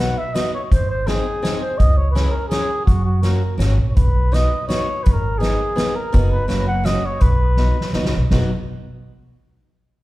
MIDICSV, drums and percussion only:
0, 0, Header, 1, 2, 480
1, 0, Start_track
1, 0, Key_signature, 5, "major"
1, 0, Tempo, 362538
1, 947, Time_signature, 3, 2, 24, 8
1, 13282, End_track
2, 0, Start_track
2, 0, Title_t, "Drums"
2, 469, Note_on_c, 9, 38, 58
2, 469, Note_on_c, 9, 42, 49
2, 601, Note_off_c, 9, 38, 0
2, 601, Note_off_c, 9, 42, 0
2, 947, Note_on_c, 9, 36, 82
2, 950, Note_on_c, 9, 42, 48
2, 1080, Note_off_c, 9, 36, 0
2, 1083, Note_off_c, 9, 42, 0
2, 1425, Note_on_c, 9, 38, 59
2, 1425, Note_on_c, 9, 42, 42
2, 1557, Note_off_c, 9, 38, 0
2, 1557, Note_off_c, 9, 42, 0
2, 1913, Note_on_c, 9, 38, 70
2, 1913, Note_on_c, 9, 42, 45
2, 2046, Note_off_c, 9, 38, 0
2, 2046, Note_off_c, 9, 42, 0
2, 2380, Note_on_c, 9, 42, 44
2, 2382, Note_on_c, 9, 36, 88
2, 2513, Note_off_c, 9, 42, 0
2, 2514, Note_off_c, 9, 36, 0
2, 2859, Note_on_c, 9, 38, 58
2, 2859, Note_on_c, 9, 42, 37
2, 2992, Note_off_c, 9, 38, 0
2, 2992, Note_off_c, 9, 42, 0
2, 3328, Note_on_c, 9, 38, 69
2, 3328, Note_on_c, 9, 42, 44
2, 3460, Note_off_c, 9, 38, 0
2, 3460, Note_off_c, 9, 42, 0
2, 3805, Note_on_c, 9, 36, 83
2, 3811, Note_on_c, 9, 42, 45
2, 3937, Note_off_c, 9, 36, 0
2, 3943, Note_off_c, 9, 42, 0
2, 4277, Note_on_c, 9, 38, 53
2, 4277, Note_on_c, 9, 42, 38
2, 4409, Note_off_c, 9, 38, 0
2, 4409, Note_off_c, 9, 42, 0
2, 4767, Note_on_c, 9, 38, 64
2, 4767, Note_on_c, 9, 42, 51
2, 4900, Note_off_c, 9, 38, 0
2, 4900, Note_off_c, 9, 42, 0
2, 5250, Note_on_c, 9, 42, 45
2, 5254, Note_on_c, 9, 36, 84
2, 5382, Note_off_c, 9, 42, 0
2, 5387, Note_off_c, 9, 36, 0
2, 5745, Note_on_c, 9, 38, 50
2, 5745, Note_on_c, 9, 42, 41
2, 5878, Note_off_c, 9, 38, 0
2, 5878, Note_off_c, 9, 42, 0
2, 6224, Note_on_c, 9, 38, 62
2, 6224, Note_on_c, 9, 42, 45
2, 6356, Note_off_c, 9, 38, 0
2, 6356, Note_off_c, 9, 42, 0
2, 6693, Note_on_c, 9, 42, 45
2, 6706, Note_on_c, 9, 36, 87
2, 6826, Note_off_c, 9, 42, 0
2, 6839, Note_off_c, 9, 36, 0
2, 7183, Note_on_c, 9, 38, 62
2, 7183, Note_on_c, 9, 42, 37
2, 7315, Note_off_c, 9, 38, 0
2, 7315, Note_off_c, 9, 42, 0
2, 7650, Note_on_c, 9, 38, 69
2, 7650, Note_on_c, 9, 42, 48
2, 7782, Note_off_c, 9, 38, 0
2, 7782, Note_off_c, 9, 42, 0
2, 8125, Note_on_c, 9, 42, 48
2, 8131, Note_on_c, 9, 36, 87
2, 8257, Note_off_c, 9, 42, 0
2, 8264, Note_off_c, 9, 36, 0
2, 8599, Note_on_c, 9, 38, 54
2, 8599, Note_on_c, 9, 42, 42
2, 8732, Note_off_c, 9, 38, 0
2, 8732, Note_off_c, 9, 42, 0
2, 9077, Note_on_c, 9, 38, 71
2, 9077, Note_on_c, 9, 42, 47
2, 9210, Note_off_c, 9, 38, 0
2, 9210, Note_off_c, 9, 42, 0
2, 9540, Note_on_c, 9, 42, 46
2, 9553, Note_on_c, 9, 36, 77
2, 9673, Note_off_c, 9, 42, 0
2, 9685, Note_off_c, 9, 36, 0
2, 10017, Note_on_c, 9, 38, 44
2, 10149, Note_off_c, 9, 38, 0
2, 10336, Note_on_c, 9, 38, 47
2, 10469, Note_off_c, 9, 38, 0
2, 10500, Note_on_c, 9, 38, 58
2, 10633, Note_off_c, 9, 38, 0
2, 10659, Note_on_c, 9, 38, 66
2, 10792, Note_off_c, 9, 38, 0
2, 10996, Note_on_c, 9, 38, 76
2, 10996, Note_on_c, 9, 52, 64
2, 11010, Note_on_c, 9, 36, 73
2, 11128, Note_off_c, 9, 38, 0
2, 11128, Note_off_c, 9, 52, 0
2, 11142, Note_off_c, 9, 36, 0
2, 13282, End_track
0, 0, End_of_file